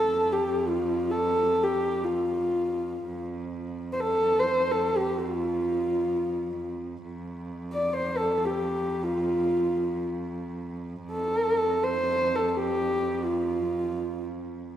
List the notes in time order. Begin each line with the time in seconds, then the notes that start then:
Already playing: F2 A4
0.33 G4
0.67 F4
1.11 A4
1.63 G4
2.04 F4
3.05 F2
3.93 C5
4.00 A4
4.40 C5
4.71 A4
4.97 G4
5.18 F4
7.02 F2
7.73 D5
7.93 C5
8.17 A4
8.44 G4
9.03 F4
11.02 F2
11.12 A4
11.84 C5
12.36 A4
12.48 A4
12.57 G4
13.24 F4